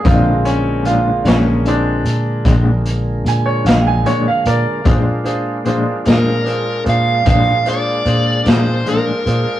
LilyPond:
<<
  \new Staff \with { instrumentName = "Lead electric guitar" } { \time 12/8 \key bes \mixolydian \tempo 4. = 50 r1. | r4. bes'4 f''8 f''8 d''4 c''8 bes'4 | }
  \new Staff \with { instrumentName = "Grand piano" } { \time 12/8 \key bes \mixolydian f'8 des'8 f'8 des'8 d'4 r4 aes''16 des''16 f''16 <g'' aes''>16 des''16 f''16 <bes' d''>8 | <d' f' aes' c''>8 <d' f' aes' c''>8 <d' f' aes' c''>8 <d' f' aes' c''>8 <d' f' aes' c''>8 <d' f' aes' c''>8 <d' f' aes' c''>8 <d' f' aes' c''>8 <d' f' aes' c''>8 <d' f' aes' c''>8 <d' f' aes' c''>8 <d' f' aes' c''>8 | }
  \new Staff \with { instrumentName = "Grand piano" } { \clef bass \time 12/8 \key bes \mixolydian <d aes c'>2 <d aes c'>8 r2. r8 | r1. | }
  \new Staff \with { instrumentName = "Tonewheel organ" } { \time 12/8 \key bes \mixolydian <d f aes bes>1. | <aes bes d' f'>1. | }
  \new Staff \with { instrumentName = "Clean electric guitar" } { \clef bass \time 12/8 \key bes \mixolydian <bes, f aes d'>8 r8 <bes, f aes d'>8 <f aes d'>8 r4 <bes, f aes d'>8 r4 <f aes d'>8 <bes, f aes d'>8 r8 | <bes, f aes d'>8 r8 <bes, f aes d'>8 <f aes d'>8 r4 <bes, f aes d'>8 r4 <f aes d'>8 <bes, f aes d'>8 r8 | }
  \new Staff \with { instrumentName = "Fingered electric bass" } { \clef bass \time 12/8 \key bes \mixolydian bes,,4. bes,,4 bes,8 bes,,4 bes,8 bes,,8 r8 bes,16 r16 | bes,4. bes,4 bes,8 bes,4 bes,8 bes,8 r8 bes,16 r16 | }
  \new DrumStaff \with { instrumentName = "Drums" } \drummode { \time 12/8 <hh bd>8 hh8 hh8 <hh sn>8 hh8 hh8 <hh bd>8 hh8 hh8 <hh sn>8 hh8 hh8 | <hh bd>8 hh8 hh8 <hh sn>8 hh8 hh8 <hh bd>8 hh8 hh8 <hh sn>8 hh8 hh8 | }
>>